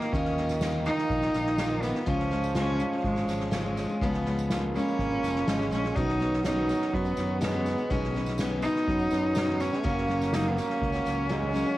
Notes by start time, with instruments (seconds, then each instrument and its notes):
Already playing: trombone D#3, cello A#3, string section A#4 D#5 F5 D#6
0.01 steel-string acoustic guitar A#3 D#4 F4, snare
0.12 fingered electric bass D#2, steel-string acoustic guitar D#3 A#3 D#4 F4, cello C#4, kick, snare
0.25 snare
0.37 steel-string acoustic guitar D#3 A#3 D#4, snare
0.41 steel-string acoustic guitar F4
0.49 snare, tambourine
0.61 steel-string acoustic guitar D#3 A#3 D#4 F4, snare, tambourine
0.86 steel-string acoustic guitar D#3 A#3 D#4 F4, cello D#4, snare, tambourine
0.98 snare, tambourine
1.10 fingered electric bass A#1, kick, snare
1.22 steel-string acoustic guitar A#3 D#4 F4, snare, tambourine
1.34 fingered electric bass A#1, steel-string acoustic guitar D#3 A#3 D#4 F4, snare, tambourine
1.46 snare
1.58 steel-string acoustic guitar D#3 A#3 D#4 F4, snare, tambourine
1.70 steel-string acoustic guitar A#3 D#4 F4, tambourine
1.82 steel-string acoustic guitar D#3 A#3 D#4 F4, cello B3, snare, tambourine
1.94 steel-string acoustic guitar A#3 D#4 F4, snare
2.06 fingered electric bass C#2, steel-string acoustic guitar C#3 F3 G#3 C#4 F4, trombone F3, cello C#4, string section G#4 C#5 C#6, kick, snare
2.19 snare
2.30 steel-string acoustic guitar F3 G#3 C#4 F4, snare
2.44 tambourine
2.55 steel-string acoustic guitar C#3 F3 G#3 C#4 F4, cello C#4, snare, tambourine
2.80 steel-string acoustic guitar F3 G#3 C#4 F4, snare, tambourine
2.92 snare, tambourine
3.04 fingered electric bass G#1, cello G#3, kick, snare
3.16 steel-string acoustic guitar G#3 C#4 F4, snare, tambourine
3.28 fingered electric bass G#1, steel-string acoustic guitar F3 G#3 C#4 F4, snare, tambourine
3.40 snare
3.51 steel-string acoustic guitar C#3 F3 G#3 C#4 F4, cello G#3, snare, tambourine
3.64 steel-string acoustic guitar G#3 C#4 F4, tambourine
3.77 steel-string acoustic guitar F3 G#3 C#4 F4, snare, tambourine
3.89 steel-string acoustic guitar G#3 C#4 F4, tambourine
4.01 fingered electric bass C#2, steel-string acoustic guitar C#3 F3 G#3 C#4 F4, cello B3, string section B5, kick, snare
4.13 snare, tambourine
4.25 steel-string acoustic guitar F3 G#3 C#4 F4, snare, tambourine
4.39 tambourine
4.49 steel-string acoustic guitar C#3 F3 G#3 C#4 F4, trombone A#3, snare, tambourine
4.63 tambourine
4.74 steel-string acoustic guitar F3 G#3 C#4 F4, cello C#4, snare, tambourine
4.88 tambourine
4.99 fingered electric bass G#1, kick, snare, tambourine
5.11 steel-string acoustic guitar G#3 C#4 F4
5.23 fingered electric bass F1, steel-string acoustic guitar F3 G#3 C#4 F4, snare, tambourine
5.36 snare, tambourine
5.47 fingered electric bass G#1, steel-string acoustic guitar C#3 F3 G#3 C#4 F4, trombone G#3, snare, tambourine
5.59 steel-string acoustic guitar G#3 C#4 F4, snare, tambourine
5.70 fingered electric bass A#1, steel-string acoustic guitar F3 G#3 C#4 F4, cello C#4, snare, tambourine
5.84 steel-string acoustic guitar G#3 C#4 F4, snare, tambourine
5.95 fingered electric bass B1, steel-string acoustic guitar B2 D#3 B3 C#4 F#4, trombone F#3, cello D#4, string section B4 D#5 F#5 C#6, kick, snare
6.09 snare
6.20 steel-string acoustic guitar D#3 B3 C#4 F#4, snare
6.33 snare
6.45 steel-string acoustic guitar B2 D#3 B3 C#4 F#4, cello D#4, snare, tambourine
6.69 steel-string acoustic guitar D#3 B3 C#4 F#4, snare, tambourine
6.81 snare, tambourine
6.93 fingered electric bass F#2, cello B3, kick, snare
7.05 steel-string acoustic guitar B3 C#4 F#4, tambourine
7.17 fingered electric bass F#2, steel-string acoustic guitar D#3 B3 C#4 F#4, snare, tambourine
7.41 steel-string acoustic guitar B2 D#3 B3 C#4 F#4, trombone G#3, cello B3, snare, tambourine
7.54 steel-string acoustic guitar B3 C#4 F#4, tambourine
7.66 steel-string acoustic guitar D#3 B3 C#4 F#4, snare, tambourine
7.78 steel-string acoustic guitar B3 C#4 F#4, tambourine
7.90 fingered electric bass B1, steel-string acoustic guitar B2 D#3 B3 C#4 F#4, cello C#4, string section B5, kick, snare
8.03 snare
8.14 steel-string acoustic guitar D#3 B3 C#4 F#4, snare
8.26 snare, tambourine
8.38 steel-string acoustic guitar B2 D#3 B3 C#4 F#4, snare, tambourine
8.62 steel-string acoustic guitar D#3 B3 C#4 F#4, cello D#4, snare, tambourine
8.76 snare
8.87 fingered electric bass F#2, trombone F#3, kick, snare
8.99 steel-string acoustic guitar B3 C#4 F#4, tambourine
9.11 fingered electric bass F#2, steel-string acoustic guitar D#3 B3 C#4 F#4, snare, tambourine
9.35 steel-string acoustic guitar B2 D#3 B3 C#4 F#4, snare, tambourine
9.47 steel-string acoustic guitar B3 C#4 F#4, snare
9.60 steel-string acoustic guitar D#3 B3 C#4 F#4, cello C#4, snare, tambourine
9.71 steel-string acoustic guitar B3 C#4 F#4, snare, tambourine
9.83 fingered electric bass F#1, steel-string acoustic guitar F#2 C#3 F#3 A#3 C#4 F#4, trombone A#3, string section A#4 C#5 C#6, kick, snare
9.97 snare
10.08 steel-string acoustic guitar F#3 A#3 C#4 F#4, snare
10.22 snare, tambourine
10.33 steel-string acoustic guitar F#2 C#3 F#3 A#3 C#4 F#4, cello D#4, snare, tambourine
10.50 cello B3
10.57 steel-string acoustic guitar F#3 A#3 C#4 F#4, cello C#4, snare, tambourine
10.70 snare
10.82 fingered electric bass C#2, kick, snare
10.92 steel-string acoustic guitar F#3 A#3 C#4 F#4, snare, tambourine
11.05 fingered electric bass C#2, steel-string acoustic guitar F#3 A#3 C#4 F#4, snare, tambourine
11.29 steel-string acoustic guitar F#2 C#3 F#3 A#3 C#4 F#4, trombone G#3, snare, tambourine
11.40 steel-string acoustic guitar F#3 A#3 C#4 F#4, snare, tambourine
11.53 steel-string acoustic guitar F#3 A#3 C#4 F#4, snare, tambourine
11.65 steel-string acoustic guitar F#3 A#3 C#4 F#4, tambourine